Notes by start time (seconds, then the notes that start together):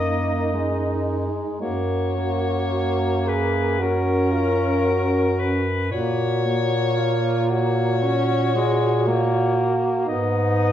Already playing: F#2 A#3 D#4 D#5
0.54 G#3
1.61 F#2 A#3 F#4 C#5
2.16 A#3
2.72 F#4
3.26 G#4 B4
3.79 C#4 F#4 A#4
4.32 F4
4.85 F#4
5.39 B4
5.89 A#2 A#3 F#4 C#5
6.45 A#3
6.96 F4
7.50 F#4 C#5
8.03 C#4
8.55 G#3
9.05 A#3 F#4
10.06 G#2 B3 D#4 D#5